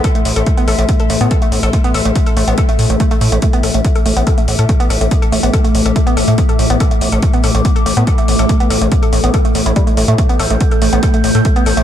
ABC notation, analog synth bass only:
X:1
M:4/4
L:1/16
Q:1/4=142
K:Am
V:1 name="Analog synth bass" clef=bass
z2 A,,, A,,, z2 A,,, A,,, z2 A,,, A,, z2 A,,, A,,, | z2 A,,, A,,, z2 A,,, A,,, z2 A,, A,,, z2 A,, A,,, | z2 A,,, A,,, z2 A,,, A,,, z2 A,,, A,, z2 A,,, A,,, | z2 A,,, A,,, z2 A,,, A,,, z2 A,,, A,, z2 A,,, A,,, |
z2 A,,, A,,, z2 A,,, A,,, z2 A,,, A,, z2 A,,, A,,, | z2 A,,, A,,, z2 A,,, A,,, z2 A,,, A,,, z2 A,,, A,, | z2 A,,, A,,, z2 A,,, A,,, z2 A,,, A,, z2 A,,, A,,, |]